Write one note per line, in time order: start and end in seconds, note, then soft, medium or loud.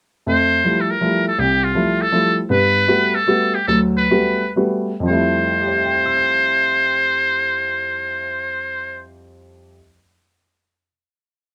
0.27 0.59 F2 medium
0.27 0.59 A3 medium
0.27 0.82 C5 medium
0.64 0.90 F3 soft
0.64 0.90 G3 soft
0.64 0.90 A3 soft
0.64 0.90 E4 medium
0.81 0.92 A4 medium
0.91 1.27 A#4 medium
1.01 1.27 F3 soft
1.01 1.27 G3 soft
1.01 1.27 A3 soft
1.01 1.27 E4 medium
1.27 1.41 A4 medium
1.39 1.71 C2 medium
1.39 1.65 G4 medium
1.64 2.03 F4 medium
1.75 2.01 F3 soft
1.75 2.01 G3 soft
1.75 2.01 A3 soft
1.75 2.01 E4 medium
2.01 2.38 A4 medium
2.12 2.38 F3 medium
2.12 2.38 G3 soft
2.12 2.38 A3 soft
2.12 2.39 E4 medium
2.50 2.82 G2 medium
2.50 2.82 B3 medium
2.50 3.16 B4 medium
2.87 3.14 G3 soft
2.87 3.14 A3 soft
2.87 3.14 B3 soft
2.87 3.15 F#4 medium
3.15 3.56 A4 medium
3.27 3.54 G3 soft
3.27 3.55 A3 soft
3.27 3.55 B3 soft
3.27 3.55 F#4 medium
3.54 3.67 G4 medium
3.67 4.04 D2 medium
3.67 4.04 F#3 medium
3.67 3.80 A4 medium
3.97 4.52 B4 medium
4.11 4.42 G3 soft
4.11 4.42 A3 soft
4.11 4.42 B3 soft
4.11 4.42 F#4 medium
4.56 4.90 G3 soft
4.56 4.91 A3 soft
4.56 4.91 B3 soft
4.56 4.91 F#4 medium
5.00 9.73 F2 medium
5.00 9.74 F3 medium
5.06 9.76 G3 medium
5.06 9.77 A3 medium
5.06 9.03 C5 medium
5.12 9.79 E4 medium
5.60 9.72 G4 soft
5.68 9.76 C5 soft
5.76 9.80 E5 soft
5.85 9.85 G5 soft
5.95 9.89 C6 soft
6.06 9.95 E6 soft
6.17 10.01 G6 soft